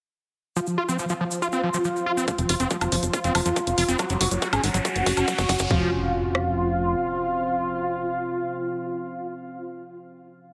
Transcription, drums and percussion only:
0.57 shaker
0.67 shaker
0.89 shaker
0.99 shaker
1.09 shaker
1.31 shaker
1.42 shaker
1.52 shaker
1.74 shaker
1.84 shaker
1.96 shaker
2.18 shaker
2.28 kick, closed hi-hat, shaker
2.38 closed hi-hat, shaker
2.49 open hi-hat
2.60 closed hi-hat, shaker
2.70 kick, closed hi-hat, shaker
2.81 closed hi-hat, high woodblock, shaker
2.92 open hi-hat
3.03 closed hi-hat, shaker
3.13 kick, closed hi-hat, shaker
3.24 closed hi-hat, shaker
3.35 open hi-hat, high woodblock
3.46 closed hi-hat, shaker
3.56 kick, closed hi-hat, shaker
3.67 closed hi-hat, shaker
3.78 open hi-hat
3.89 closed hi-hat, shaker
3.98 kick, closed hi-hat, high woodblock, shaker
4.09 closed hi-hat, shaker
4.21 open hi-hat
4.31 closed hi-hat, shaker
4.42 kick, closed hi-hat, shaker
4.53 closed hi-hat, high woodblock, shaker
4.64 open hi-hat
4.74 closed hi-hat, shaker
4.85 kick, closed hi-hat, shaker
4.95 closed hi-hat, shaker
5.06 kick, open hi-hat
5.17 closed hi-hat, high woodblock, shaker
5.28 kick, closed hi-hat, shaker
5.38 kick, closed hi-hat, shaker
5.49 kick, open hi-hat
5.59 kick, closed hi-hat, shaker
5.71 kick
6.35 cross-stick

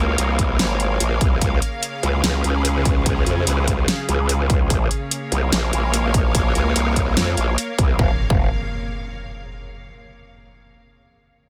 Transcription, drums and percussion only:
0.18 closed hi-hat
0.39 kick, closed hi-hat
0.59 snare, closed hi-hat
0.80 closed hi-hat
1.00 closed hi-hat
1.21 kick, closed hi-hat
1.41 kick, closed hi-hat
1.62 closed hi-hat
1.83 closed hi-hat
2.03 closed hi-hat
2.24 snare, closed hi-hat
2.44 closed hi-hat
2.65 closed hi-hat
2.85 kick, closed hi-hat
3.06 kick, closed hi-hat
3.26 closed hi-hat
3.47 closed hi-hat
3.68 kick, closed hi-hat
3.88 snare, closed hi-hat
4.09 closed hi-hat
4.29 closed hi-hat
4.50 kick, closed hi-hat
4.70 kick, closed hi-hat
4.91 closed hi-hat
5.11 closed hi-hat
5.32 closed hi-hat
5.52 snare, closed hi-hat
5.73 closed hi-hat
5.94 closed hi-hat
6.14 kick, closed hi-hat
6.35 kick, closed hi-hat
6.55 closed hi-hat
6.76 closed hi-hat
6.96 kick, closed hi-hat
7.17 snare, closed hi-hat
7.37 closed hi-hat
7.58 closed hi-hat
7.79 kick, closed hi-hat
7.99 kick
8.30 kick

